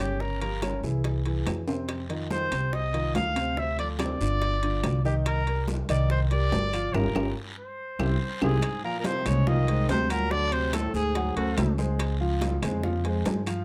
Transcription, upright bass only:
Already playing: G1
0.83 C2
1.46 F2
2.52 C2
3.15 D2
4.20 G1
4.84 C2
5.89 C2
6.52 G1
6.94 G1
7.15 G1
7.99 C2
8.42 C2
9.26 C2
9.89 D2
10.94 D2
11.36 D2
11.58 C#2
12.62 F2

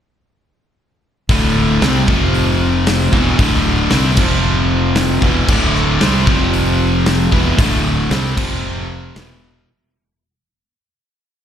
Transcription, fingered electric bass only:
1.29 D1
1.82 C2
2.08 F1
3.12 E1
3.39 D1
3.93 C2
4.18 F1
5.22 E1
5.48 D1
6.02 C2
6.27 F1
7.32 E1
7.59 D1
8.11 C2
8.37 F1
9.16 E1

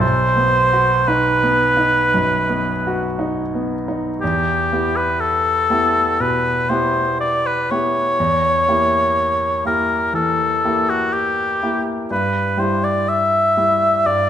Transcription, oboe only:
0.01 C5
1.08 B4
4.21 G4
4.96 B4
5.20 A4
6.21 B4
6.69 C5
7.20 D5
7.47 B4
7.71 C#5
9.67 A#4
10.15 A4
10.90 F#4
11.13 G4
12.11 B4
12.60 C5
12.84 D5
13.09 E5
14.06 D5

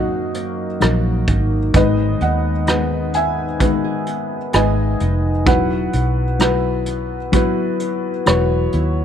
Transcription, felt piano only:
Already playing: F#1 F#2 F#3 A#3 D#4 F#4 A#4 D#5 F#5
0.80 F#3 A#3 D#4 A#4
1.74 G#1 G#2 G#3 B3 D#4 B4 D#5
1.79 B4
2.22 D#5 F#5
2.67 D#3 G#3 B3 B4
3.15 E5 G#5
3.60 D#3 G#3 B3 B4
4.53 G#3 B3 D#4 B4 D#5 G#5
5.46 F#3 B3 E4 B4 F#5
6.39 F#3 B3 E4 B4
7.32 F#3 B3 E4 B4
8.26 F#3 B3 E4 F#4 B4 C#5

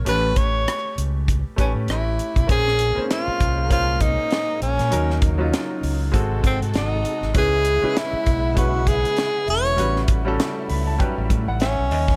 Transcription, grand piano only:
0.05 A3 C#4 G4 B4
1.56 A3 C#4 G4 B4
2.47 A#3 C#4 G#4 C5
2.95 A#3 C4 G#4 C5
3.02 C#4
3.69 A#3 C#4 G#4 C5
4.90 F#3 C#4 D#4 A#4
5.38 F#3 C#4 D#4 F4
6.12 G#3 C4 F#4 A4
7.34 G#3 C#4 E4 B4
7.82 G#3 C#4 E4 B4
8.55 G#3 C#4 E4 B4
9.76 G3 C#4 F#4 B4
10.25 G3 C#4 F#4 A4
10.69 B5
10.87 A5
10.98 F#3 G3 C#4 B4 G5
11.48 F#5
11.61 E5
11.91 D#5

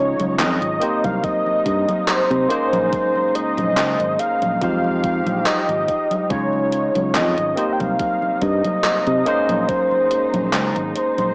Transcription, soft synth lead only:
Already playing: C#5
0.40 D#5
1.04 F5
1.24 D#5
2.08 C5
2.93 C5
3.35 D#5
4.19 F5
4.62 F5
5.46 D#5
6.31 C#5
7.15 D#5
7.73 G5
7.80 F5
8.42 D#5
9.68 C5
10.95 C5

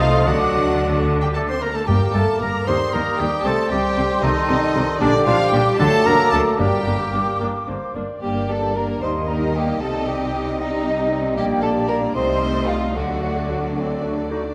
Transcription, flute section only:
Already playing: D#6
0.28 D6
1.87 D6
2.67 D#6
3.46 C6
5.02 D6
5.80 D6
6.60 D6
8.23 G5
8.50 A5
8.76 A#5
9.04 C6
9.30 A#5
9.56 G5
9.82 A5
10.08 G5
10.60 D#5
11.37 G5
11.63 A5
11.88 A#5
12.15 C6
12.68 F5
12.95 F#5

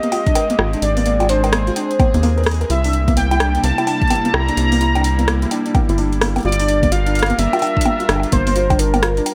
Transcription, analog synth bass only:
0.59 G#1
0.82 G#1
2.14 D#2
2.70 C2
3.64 C2
4.34 C2
4.57 C2
5.89 G1
6.45 G1
7.39 G1
8.09 G1
8.32 G1

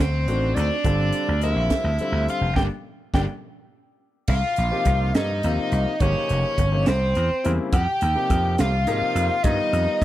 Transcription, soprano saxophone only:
0.00 C5
0.55 D5
1.43 E5
2.30 F5
2.56 G5
3.15 G5
4.28 F5
5.15 D#5
6.01 C#5
6.88 C5
7.73 G5
8.60 F5
9.43 D#5

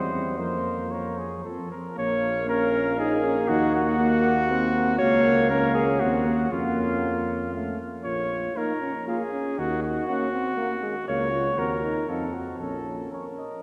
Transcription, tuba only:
Already playing: E2
0.39 F2
1.45 F2
1.98 A#1
3.50 D#2
5.02 C#2
6.01 D#2
6.51 F2
8.05 A#1
9.58 D#2
11.08 C#2
11.57 D#2
12.08 F2
12.60 A#1

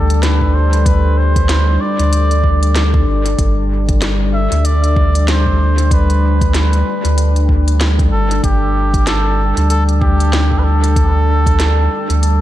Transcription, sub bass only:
Already playing: D2
1.99 D2
3.07 G1
3.39 G1
4.52 D2
7.05 D2
8.12 G1
8.44 G1
9.57 D2
12.10 D2

